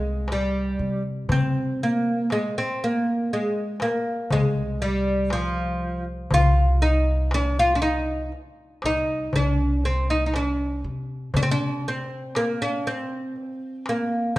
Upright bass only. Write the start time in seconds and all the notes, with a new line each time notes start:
Already playing: C2
0.79 C3
1.29 C3
4.30 C2
6.32 C2
8.84 C2
9.33 C2
10.84 C3
11.34 C3